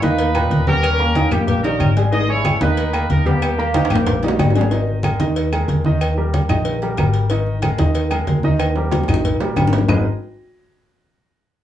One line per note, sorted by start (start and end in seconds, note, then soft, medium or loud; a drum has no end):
0.02 0.48 D#2 loud
0.02 0.29 D#3 medium
0.02 0.25 A#3 medium
0.02 0.29 D#4 medium
0.02 0.64 D#4 medium
0.02 0.63 B4 loud
0.02 0.30 D#5 medium
0.02 cowbell medium
0.02 high conga medium
0.19 cowbell loud
0.19 high conga soft
0.19 low agogo medium
0.35 0.62 A#2 medium
0.35 0.62 B4 medium
0.35 0.62 A#5 medium
0.35 cowbell medium
0.35 high conga soft
0.35 low agogo loud
0.35 claves medium
0.50 1.26 D#2 loud
0.50 cowbell medium
0.50 high conga medium
0.67 0.94 G3 medium
0.67 0.90 B3 medium
0.67 1.28 C#4 medium
0.67 0.94 G4 medium
0.67 1.28 A#4 loud
0.67 0.94 G5 medium
0.67 high conga medium
0.83 cowbell loud
0.83 low agogo loud
0.83 claves medium
0.99 1.22 A#3 medium
0.99 1.13 A#3 medium
0.99 1.13 A#4 medium
0.99 1.13 A#5 medium
0.99 high conga soft
1.16 1.29 D#3 medium
1.16 1.29 D#4 medium
1.16 1.30 D#5 medium
1.16 cowbell medium
1.16 high conga loud
1.16 low agogo medium
1.31 1.77 A#1 loud
1.31 1.59 G3 medium
1.31 1.54 A#3 medium
1.31 1.47 A#3 medium
1.31 1.46 G4 medium
1.31 1.59 G4 medium
1.31 1.59 G5 medium
1.31 cowbell medium
1.31 high conga soft
1.31 low conga medium
1.31 low agogo loud
1.31 claves medium
1.47 1.63 A#3 medium
1.47 1.63 G4 loud
1.47 cowbell loud
1.47 high conga soft
1.47 low conga medium
1.64 1.91 D#3 medium
1.64 1.87 G3 medium
1.64 1.95 C#4 medium
1.64 1.91 D#4 medium
1.64 1.94 A#4 loud
1.64 1.91 D#5 medium
1.64 high conga soft
1.64 low agogo medium
1.80 2.56 G#1 medium
1.80 cowbell medium
1.80 high conga medium
1.80 low agogo loud
1.80 claves medium
1.97 2.08 G3 medium
1.97 2.10 G#3 medium
1.97 2.10 G#4 medium
1.97 2.10 G#5 medium
1.97 cowbell medium
2.12 2.26 D#3 medium
2.12 2.36 G#3 loud
2.12 2.26 D#4 medium
2.12 2.28 G#4 medium
2.12 2.28 D#5 loud
2.12 2.26 D#5 medium
2.12 cowbell loud
2.12 high conga soft
2.12 low agogo medium
2.29 2.55 G#3 medium
2.29 2.60 E4 medium
2.29 2.56 G#4 medium
2.29 2.59 C#5 loud
2.29 2.56 G#5 medium
2.29 high conga soft
2.45 cowbell medium
2.45 high conga loud
2.45 low agogo loud
2.45 claves medium
2.61 3.06 D#2 loud
2.61 2.88 D#3 medium
2.61 2.84 A#3 medium
2.61 2.88 D#4 medium
2.61 3.07 D#4 medium
2.61 3.06 B4 medium
2.61 2.88 D#5 medium
2.61 cowbell medium
2.61 high conga loud
2.77 cowbell loud
2.77 high conga soft
2.77 low agogo medium
2.93 3.20 A#3 medium
2.93 3.20 A#4 medium
2.93 3.21 A#5 medium
2.93 cowbell medium
2.93 high conga soft
2.93 low agogo loud
2.93 claves medium
3.10 3.85 D#2 loud
3.10 3.27 D#4 medium
3.10 3.26 A#4 medium
3.10 cowbell medium
3.10 high conga medium
3.26 3.52 G3 medium
3.26 4.40 A#3 medium
3.26 3.49 B3 medium
3.26 3.53 G4 medium
3.26 4.39 G4 medium
3.26 3.53 G5 medium
3.26 high conga medium
3.42 cowbell loud
3.42 high conga soft
3.42 low agogo loud
3.42 claves medium
3.58 3.72 A#3 medium
3.58 3.82 A#3 medium
3.58 3.72 A#4 medium
3.58 3.72 A#5 medium
3.58 high conga soft
3.74 3.88 D#3 medium
3.74 3.88 D#4 medium
3.74 3.88 D#5 medium
3.74 cowbell medium
3.74 high conga loud
3.74 high timbale medium
3.74 low agogo medium
3.85 high timbale loud
3.90 4.36 A#1 loud
3.90 4.17 G3 medium
3.90 4.14 A#3 medium
3.90 4.18 G4 medium
3.90 4.18 G5 medium
3.90 cowbell medium
3.90 high conga soft
3.90 low conga medium
3.90 low agogo loud
3.90 claves medium
3.96 high timbale medium
4.06 cowbell loud
4.06 high conga soft
4.06 low conga medium
4.06 high timbale loud
4.23 4.50 D#3 medium
4.23 4.46 G3 medium
4.23 4.50 D#4 medium
4.23 4.50 D#5 medium
4.23 high bongo medium
4.23 high conga soft
4.23 low agogo medium
4.28 low timbale loud
4.39 5.14 G#1 loud
4.39 cowbell medium
4.39 high bongo medium
4.39 high conga medium
4.39 low timbale medium
4.39 low agogo loud
4.39 claves medium
4.50 low timbale medium
4.55 4.67 G3 medium
4.55 4.69 G#3 medium
4.55 4.69 G#4 medium
4.55 4.69 G#5 medium
4.55 cowbell medium
4.55 low bongo medium
4.55 high conga soft
4.61 low timbale medium
4.71 4.98 D#3 medium
4.71 4.98 D#4 medium
4.71 4.99 D#5 medium
4.71 cowbell loud
4.71 high conga soft
4.71 low agogo medium
4.87 high conga soft
5.03 5.17 G#3 medium
5.03 5.17 G#4 medium
5.03 5.17 A#4 medium
5.03 cowbell medium
5.03 high conga loud
5.03 low agogo loud
5.03 claves medium
5.20 5.65 D#2 loud
5.20 5.46 D#3 medium
5.20 5.47 D#4 medium
5.20 5.47 D#5 medium
5.20 cowbell medium
5.20 high conga medium
5.36 cowbell loud
5.36 low agogo medium
5.52 5.79 G#3 medium
5.52 5.79 G#4 medium
5.52 5.79 A#4 medium
5.52 cowbell medium
5.52 high conga soft
5.52 low agogo loud
5.52 claves medium
5.68 6.44 D#2 loud
5.68 cowbell medium
5.68 high conga medium
5.85 6.12 D#3 loud
5.85 6.12 D#4 medium
5.85 6.12 D#5 medium
5.85 high conga medium
6.01 cowbell loud
6.01 high conga soft
6.01 low agogo loud
6.01 claves medium
6.17 6.44 G3 medium
6.17 6.44 G4 medium
6.17 6.44 A#4 medium
6.17 high conga soft
6.34 cowbell medium
6.34 high conga loud
6.34 low agogo medium
6.49 6.94 A#1 loud
6.49 6.76 D#3 medium
6.49 6.76 D#4 medium
6.49 6.76 D#5 medium
6.49 cowbell medium
6.49 high conga soft
6.49 low conga medium
6.49 low agogo loud
6.49 claves medium
6.65 cowbell loud
6.65 high conga soft
6.82 6.95 G3 medium
6.82 6.96 G4 medium
6.82 6.96 A#4 medium
6.82 high conga soft
6.82 low agogo medium
6.97 7.73 G#1 medium
6.97 7.25 G3 medium
6.97 7.25 G4 medium
6.97 7.25 A#4 medium
6.97 cowbell medium
6.97 high conga medium
6.97 low timbale medium
6.97 low agogo loud
6.97 claves medium
7.13 cowbell medium
7.13 high conga soft
7.30 7.57 D#3 medium
7.30 7.57 D#4 medium
7.30 7.57 D#5 medium
7.30 cowbell loud
7.30 high conga soft
7.30 low agogo medium
7.47 high conga soft
7.62 7.76 G#3 medium
7.62 7.76 G#4 medium
7.62 7.77 A#4 medium
7.62 cowbell medium
7.62 high conga loud
7.62 low agogo loud
7.62 claves medium
7.79 8.24 D#2 loud
7.79 8.05 D#3 medium
7.79 8.06 D#4 medium
7.79 8.06 D#5 medium
7.79 cowbell medium
7.79 high conga loud
7.95 cowbell loud
7.95 high conga soft
7.95 low agogo medium
8.11 8.38 G#3 medium
8.11 8.38 G#4 medium
8.11 8.38 A#4 medium
8.11 cowbell medium
8.11 high conga soft
8.11 low agogo loud
8.11 claves medium
8.27 9.03 D#2 medium
8.27 cowbell medium
8.27 high conga medium
8.27 low timbale medium
8.43 8.70 D#3 medium
8.43 8.71 D#4 loud
8.43 8.71 D#5 loud
8.43 high conga medium
8.59 cowbell loud
8.59 high timbale medium
8.59 low agogo loud
8.59 claves medium
8.76 9.03 G3 medium
8.76 9.03 G4 medium
8.76 9.03 A#4 medium
8.76 high conga soft
8.76 high timbale medium
8.92 cowbell medium
8.92 high bongo medium
8.92 high conga loud
8.92 high timbale medium
8.92 low agogo loud
9.03 high bongo medium
9.08 9.38 A#1 loud
9.08 9.35 D#3 medium
9.08 9.35 D#4 medium
9.08 9.36 D#5 medium
9.08 cowbell medium
9.08 high conga soft
9.08 low conga medium
9.08 low agogo loud
9.08 claves medium
9.14 high bongo medium
9.25 cowbell loud
9.25 high conga soft
9.25 low conga medium
9.40 9.55 A#1 medium
9.40 9.54 G3 medium
9.40 9.54 G4 medium
9.40 9.55 A#4 medium
9.40 high conga soft
9.40 low timbale loud
9.40 low agogo medium
9.56 9.85 G#1 medium
9.56 9.84 G3 medium
9.56 9.84 G4 medium
9.56 9.84 A#4 medium
9.56 cowbell medium
9.56 low bongo medium
9.56 high conga medium
9.56 low timbale medium
9.56 low agogo loud
9.56 claves medium
9.68 low bongo medium
9.72 cowbell medium
9.72 high conga soft
9.72 low timbale loud
9.78 low bongo medium
9.89 10.04 G#1 medium
9.89 10.04 G#3 medium
9.89 10.04 D#4 medium
9.89 10.04 G#4 medium
9.89 10.04 A#4 medium
9.89 10.04 B4 medium
9.89 10.05 D#5 loud
9.89 low bongo loud
9.89 low conga loud
9.89 low timbale loud
9.89 claves loud